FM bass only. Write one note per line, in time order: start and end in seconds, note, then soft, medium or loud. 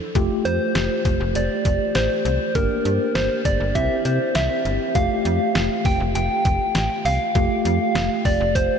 0.15 0.29 F1 loud
0.45 0.59 F2 loud
0.75 0.89 F1 loud
1.05 1.19 F1 loud
1.20 1.34 F1 loud
1.35 1.49 F1 medium
1.65 1.79 F1 loud
1.95 2.09 A1 medium
2.25 2.39 C2 medium
2.55 2.69 G1 loud
2.85 2.99 G2 medium
3.15 3.29 G1 loud
3.45 3.59 G1 loud
3.60 3.74 G1 medium
3.75 3.89 C2 loud
4.05 4.19 C3 medium
4.35 4.49 C2 loud
4.65 4.79 G1 medium
4.95 5.09 F1 loud
5.25 5.39 F2 loud
5.55 5.69 F1 loud
5.85 5.99 F1 loud
6.00 6.14 F1 medium
6.15 6.29 F1 loud
6.45 6.59 F1 loud
6.75 6.89 A1 medium
7.05 7.19 C2 loud
7.35 7.49 F1 loud
7.65 7.79 F2 loud
7.95 8.09 F1 loud
8.25 8.39 F1 loud
8.40 8.54 F1 loud
8.55 8.69 F1 loud